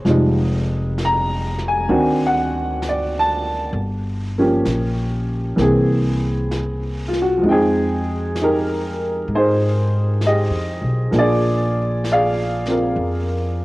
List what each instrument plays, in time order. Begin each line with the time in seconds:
0.04 upright bass F1, upright piano F3 G#3 D#4, brush sweep, snare
0.09 upright piano G3
0.98 brush sweep, snare, hi-hat pedal
1.05 upright piano A#5
1.59 snare
1.68 upright piano G#5
1.89 upright bass D2, upright piano D#3 C4 D4 F#4, brush sweep
2.27 upright piano F#5
2.82 brush sweep, snare, hi-hat pedal
2.89 upright piano D5
3.19 upright piano A5
3.73 upright bass G1, brush sweep
4.38 upright piano F3 A#3 C#4 G4
4.65 upright bass A#1, brush sweep, snare, hi-hat pedal
5.56 upright bass C2, upright piano E3 A#3 C4, brush sweep, snare
5.61 upright piano G#4
6.51 brush sweep, snare, hi-hat pedal
7.08 upright piano F4
7.13 snare
7.22 upright piano F#4
7.37 upright piano F3
7.41 upright bass F2, upright piano G#3 D#4, brush sweep
7.49 upright piano C4 D#4 G#4 G5
8.36 brush sweep, snare, hi-hat pedal
8.41 upright piano D#4 G4 A#4
9.28 upright bass G#2, brush sweep
9.35 upright piano D#4 G#4 C5
10.21 brush sweep, snare, hi-hat pedal
10.26 upright piano G4 G#4 D#5
10.50 upright bass F2
10.81 upright bass B1
11.11 upright bass A#1, upright piano F3 A#3 D4, brush sweep, snare
11.15 upright piano F4 G#4 D5
12.04 brush sweep, snare, hi-hat pedal
12.12 upright piano G#4 D5 F5
12.66 upright piano C4 F4, snare
12.70 upright piano A#4
12.96 upright bass F2, brush sweep